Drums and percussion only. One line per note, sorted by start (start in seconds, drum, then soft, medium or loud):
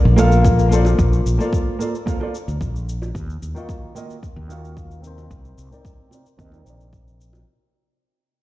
0.18 cabasa medium
0.32 cabasa soft
0.45 kick medium
0.45 cabasa soft
0.59 cabasa soft
0.72 cabasa medium
0.85 high bongo medium
0.85 cabasa soft
0.99 kick medium
0.99 cabasa soft
1.13 cabasa soft
1.26 cabasa medium
1.40 cabasa soft
1.53 kick medium
1.53 cabasa soft
1.80 high bongo soft
1.80 cabasa medium
1.95 cabasa soft
2.07 kick medium
2.07 cabasa soft
2.21 high bongo medium
2.35 cabasa medium
2.48 cabasa soft
2.61 kick medium
2.61 cabasa soft
2.76 cabasa soft
2.89 cabasa medium
3.02 high bongo medium
3.02 cabasa soft
3.15 kick medium
3.15 cabasa soft
3.30 cabasa soft
3.43 cabasa medium
3.56 cabasa soft
3.69 kick medium
3.69 cabasa soft
3.96 high bongo soft
3.96 cabasa medium
4.10 cabasa soft
4.23 kick medium
4.23 cabasa soft
4.50 cabasa medium
4.65 cabasa soft
4.77 kick medium
4.77 cabasa soft
4.91 cabasa soft
5.04 cabasa medium
5.18 high bongo medium
5.18 cabasa soft
5.31 kick medium
5.31 cabasa soft
5.45 cabasa soft
5.58 cabasa medium
5.72 cabasa soft
5.85 kick medium
5.85 cabasa soft
6.11 high bongo soft
6.11 cabasa medium
6.26 cabasa soft
6.39 kick medium
6.39 cabasa soft
6.52 high bongo soft
6.52 cabasa soft
6.66 cabasa medium
6.81 cabasa soft
6.93 kick medium
6.93 cabasa soft
7.08 cabasa soft
7.21 cabasa medium
7.33 high bongo medium
7.33 cabasa soft